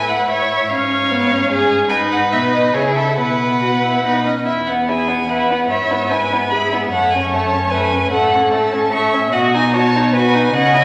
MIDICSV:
0, 0, Header, 1, 5, 480
1, 0, Start_track
1, 0, Key_signature, 4, "major"
1, 0, Tempo, 405954
1, 829, Time_signature, 3, 2, 24, 8
1, 2744, Tempo, 424929
1, 6104, Tempo, 404040
1, 12696, End_track
2, 0, Start_track
2, 0, Title_t, "Violin"
2, 0, Program_c, 0, 40
2, 0, Note_on_c, 0, 80, 60
2, 105, Note_on_c, 0, 78, 53
2, 123, Note_off_c, 0, 80, 0
2, 333, Note_off_c, 0, 78, 0
2, 340, Note_on_c, 0, 76, 54
2, 833, Note_on_c, 0, 77, 70
2, 851, Note_off_c, 0, 76, 0
2, 2021, Note_off_c, 0, 77, 0
2, 2241, Note_on_c, 0, 80, 80
2, 2336, Note_off_c, 0, 80, 0
2, 2503, Note_on_c, 0, 78, 67
2, 2598, Note_off_c, 0, 78, 0
2, 2744, Note_on_c, 0, 76, 67
2, 2835, Note_off_c, 0, 76, 0
2, 2978, Note_on_c, 0, 75, 63
2, 3211, Note_off_c, 0, 75, 0
2, 3223, Note_on_c, 0, 73, 58
2, 3313, Note_off_c, 0, 73, 0
2, 3454, Note_on_c, 0, 76, 50
2, 3688, Note_off_c, 0, 76, 0
2, 3695, Note_on_c, 0, 78, 57
2, 4901, Note_off_c, 0, 78, 0
2, 4915, Note_on_c, 0, 75, 39
2, 5142, Note_off_c, 0, 75, 0
2, 5149, Note_on_c, 0, 76, 58
2, 5239, Note_off_c, 0, 76, 0
2, 5389, Note_on_c, 0, 78, 47
2, 5479, Note_off_c, 0, 78, 0
2, 5638, Note_on_c, 0, 80, 52
2, 6105, Note_on_c, 0, 78, 53
2, 6123, Note_off_c, 0, 80, 0
2, 6576, Note_off_c, 0, 78, 0
2, 6583, Note_on_c, 0, 76, 56
2, 7066, Note_on_c, 0, 80, 53
2, 7084, Note_off_c, 0, 76, 0
2, 7541, Note_on_c, 0, 83, 57
2, 7559, Note_off_c, 0, 80, 0
2, 7776, Note_off_c, 0, 83, 0
2, 7783, Note_on_c, 0, 76, 50
2, 7878, Note_off_c, 0, 76, 0
2, 8029, Note_on_c, 0, 78, 67
2, 8256, Note_on_c, 0, 80, 58
2, 8274, Note_off_c, 0, 78, 0
2, 8495, Note_off_c, 0, 80, 0
2, 8502, Note_on_c, 0, 81, 62
2, 8959, Note_on_c, 0, 80, 60
2, 8977, Note_off_c, 0, 81, 0
2, 9433, Note_off_c, 0, 80, 0
2, 9440, Note_on_c, 0, 78, 71
2, 9914, Note_off_c, 0, 78, 0
2, 9920, Note_on_c, 0, 81, 65
2, 10412, Note_on_c, 0, 85, 67
2, 10430, Note_off_c, 0, 81, 0
2, 10652, Note_off_c, 0, 85, 0
2, 10887, Note_on_c, 0, 78, 79
2, 10982, Note_off_c, 0, 78, 0
2, 11147, Note_on_c, 0, 80, 72
2, 11374, Note_off_c, 0, 80, 0
2, 11381, Note_on_c, 0, 81, 82
2, 11850, Note_off_c, 0, 81, 0
2, 11868, Note_on_c, 0, 80, 74
2, 12333, Note_on_c, 0, 78, 88
2, 12350, Note_off_c, 0, 80, 0
2, 12576, Note_on_c, 0, 80, 78
2, 12593, Note_off_c, 0, 78, 0
2, 12696, Note_off_c, 0, 80, 0
2, 12696, End_track
3, 0, Start_track
3, 0, Title_t, "Viola"
3, 0, Program_c, 1, 41
3, 0, Note_on_c, 1, 64, 42
3, 830, Note_on_c, 1, 61, 48
3, 848, Note_off_c, 1, 64, 0
3, 1309, Note_on_c, 1, 59, 58
3, 1327, Note_off_c, 1, 61, 0
3, 1547, Note_on_c, 1, 61, 52
3, 1564, Note_off_c, 1, 59, 0
3, 1781, Note_off_c, 1, 61, 0
3, 1788, Note_on_c, 1, 61, 50
3, 2251, Note_off_c, 1, 61, 0
3, 2258, Note_on_c, 1, 63, 50
3, 3223, Note_on_c, 1, 64, 48
3, 3240, Note_off_c, 1, 63, 0
3, 3699, Note_off_c, 1, 64, 0
3, 3706, Note_on_c, 1, 64, 38
3, 4142, Note_off_c, 1, 64, 0
3, 4196, Note_on_c, 1, 66, 47
3, 4286, Note_off_c, 1, 66, 0
3, 4433, Note_on_c, 1, 64, 40
3, 4688, Note_on_c, 1, 63, 43
3, 4705, Note_off_c, 1, 64, 0
3, 4929, Note_on_c, 1, 61, 37
3, 4946, Note_off_c, 1, 63, 0
3, 5170, Note_off_c, 1, 61, 0
3, 5633, Note_on_c, 1, 68, 40
3, 6068, Note_off_c, 1, 68, 0
3, 6109, Note_on_c, 1, 71, 46
3, 6573, Note_off_c, 1, 71, 0
3, 6581, Note_on_c, 1, 73, 44
3, 7075, Note_on_c, 1, 71, 53
3, 7093, Note_off_c, 1, 73, 0
3, 7556, Note_on_c, 1, 68, 45
3, 7573, Note_off_c, 1, 71, 0
3, 8026, Note_off_c, 1, 68, 0
3, 8033, Note_on_c, 1, 73, 48
3, 8971, Note_on_c, 1, 71, 52
3, 8989, Note_off_c, 1, 73, 0
3, 9451, Note_off_c, 1, 71, 0
3, 9458, Note_on_c, 1, 69, 53
3, 10391, Note_off_c, 1, 69, 0
3, 10408, Note_on_c, 1, 76, 63
3, 10893, Note_on_c, 1, 75, 54
3, 10911, Note_off_c, 1, 76, 0
3, 11372, Note_on_c, 1, 73, 66
3, 11390, Note_off_c, 1, 75, 0
3, 11844, Note_on_c, 1, 71, 66
3, 11862, Note_off_c, 1, 73, 0
3, 12328, Note_off_c, 1, 71, 0
3, 12335, Note_on_c, 1, 75, 71
3, 12696, Note_off_c, 1, 75, 0
3, 12696, End_track
4, 0, Start_track
4, 0, Title_t, "Violin"
4, 0, Program_c, 2, 40
4, 0, Note_on_c, 2, 71, 40
4, 339, Note_off_c, 2, 71, 0
4, 346, Note_on_c, 2, 73, 43
4, 819, Note_off_c, 2, 73, 0
4, 835, Note_on_c, 2, 73, 45
4, 1766, Note_off_c, 2, 73, 0
4, 1787, Note_on_c, 2, 68, 53
4, 2253, Note_off_c, 2, 68, 0
4, 2261, Note_on_c, 2, 71, 57
4, 3214, Note_on_c, 2, 68, 49
4, 3231, Note_off_c, 2, 71, 0
4, 3465, Note_on_c, 2, 69, 41
4, 3482, Note_off_c, 2, 68, 0
4, 3707, Note_off_c, 2, 69, 0
4, 3715, Note_on_c, 2, 71, 38
4, 4673, Note_off_c, 2, 71, 0
4, 4701, Note_on_c, 2, 71, 35
4, 4940, Note_off_c, 2, 71, 0
4, 5157, Note_on_c, 2, 64, 35
4, 5410, Note_on_c, 2, 59, 33
4, 5427, Note_off_c, 2, 64, 0
4, 5641, Note_on_c, 2, 64, 34
4, 5658, Note_off_c, 2, 59, 0
4, 5866, Note_on_c, 2, 59, 31
4, 5883, Note_off_c, 2, 64, 0
4, 6096, Note_off_c, 2, 59, 0
4, 6103, Note_on_c, 2, 64, 37
4, 6352, Note_on_c, 2, 59, 32
4, 6370, Note_off_c, 2, 64, 0
4, 6591, Note_off_c, 2, 59, 0
4, 6601, Note_on_c, 2, 64, 43
4, 6832, Note_on_c, 2, 59, 38
4, 6850, Note_off_c, 2, 64, 0
4, 7073, Note_on_c, 2, 64, 41
4, 7090, Note_off_c, 2, 59, 0
4, 7332, Note_on_c, 2, 59, 36
4, 7349, Note_off_c, 2, 64, 0
4, 7555, Note_off_c, 2, 59, 0
4, 7563, Note_on_c, 2, 64, 42
4, 7804, Note_on_c, 2, 59, 37
4, 7821, Note_off_c, 2, 64, 0
4, 8039, Note_off_c, 2, 59, 0
4, 8060, Note_on_c, 2, 57, 43
4, 8303, Note_on_c, 2, 61, 38
4, 8321, Note_off_c, 2, 57, 0
4, 8528, Note_on_c, 2, 57, 45
4, 8545, Note_off_c, 2, 61, 0
4, 8761, Note_on_c, 2, 61, 41
4, 8779, Note_off_c, 2, 57, 0
4, 8977, Note_off_c, 2, 61, 0
4, 8984, Note_on_c, 2, 57, 42
4, 9226, Note_on_c, 2, 61, 43
4, 9244, Note_off_c, 2, 57, 0
4, 9463, Note_off_c, 2, 61, 0
4, 9472, Note_on_c, 2, 57, 48
4, 9727, Note_on_c, 2, 61, 43
4, 9745, Note_off_c, 2, 57, 0
4, 9932, Note_on_c, 2, 57, 46
4, 9950, Note_off_c, 2, 61, 0
4, 10179, Note_on_c, 2, 61, 41
4, 10197, Note_off_c, 2, 57, 0
4, 10397, Note_off_c, 2, 61, 0
4, 10404, Note_on_c, 2, 57, 51
4, 10663, Note_on_c, 2, 61, 44
4, 10681, Note_off_c, 2, 57, 0
4, 10891, Note_off_c, 2, 61, 0
4, 10898, Note_on_c, 2, 66, 51
4, 11153, Note_on_c, 2, 63, 47
4, 11171, Note_off_c, 2, 66, 0
4, 11382, Note_on_c, 2, 66, 50
4, 11400, Note_off_c, 2, 63, 0
4, 11639, Note_on_c, 2, 63, 44
4, 11657, Note_off_c, 2, 66, 0
4, 11868, Note_off_c, 2, 63, 0
4, 11873, Note_on_c, 2, 66, 54
4, 12107, Note_on_c, 2, 63, 47
4, 12125, Note_off_c, 2, 66, 0
4, 12344, Note_off_c, 2, 63, 0
4, 12349, Note_on_c, 2, 61, 56
4, 12579, Note_on_c, 2, 64, 48
4, 12596, Note_off_c, 2, 61, 0
4, 12696, Note_off_c, 2, 64, 0
4, 12696, End_track
5, 0, Start_track
5, 0, Title_t, "Cello"
5, 0, Program_c, 3, 42
5, 0, Note_on_c, 3, 45, 45
5, 786, Note_off_c, 3, 45, 0
5, 825, Note_on_c, 3, 44, 53
5, 2229, Note_off_c, 3, 44, 0
5, 2262, Note_on_c, 3, 44, 57
5, 2754, Note_on_c, 3, 47, 53
5, 2771, Note_off_c, 3, 44, 0
5, 3210, Note_off_c, 3, 47, 0
5, 3217, Note_on_c, 3, 49, 45
5, 3700, Note_on_c, 3, 47, 42
5, 3717, Note_off_c, 3, 49, 0
5, 4679, Note_off_c, 3, 47, 0
5, 4686, Note_on_c, 3, 47, 33
5, 4932, Note_off_c, 3, 47, 0
5, 5161, Note_on_c, 3, 40, 39
5, 6536, Note_off_c, 3, 40, 0
5, 6584, Note_on_c, 3, 44, 46
5, 8006, Note_off_c, 3, 44, 0
5, 8040, Note_on_c, 3, 42, 47
5, 9433, Note_off_c, 3, 42, 0
5, 9458, Note_on_c, 3, 45, 53
5, 10863, Note_off_c, 3, 45, 0
5, 10894, Note_on_c, 3, 47, 64
5, 12310, Note_off_c, 3, 47, 0
5, 12331, Note_on_c, 3, 49, 65
5, 12696, Note_off_c, 3, 49, 0
5, 12696, End_track
0, 0, End_of_file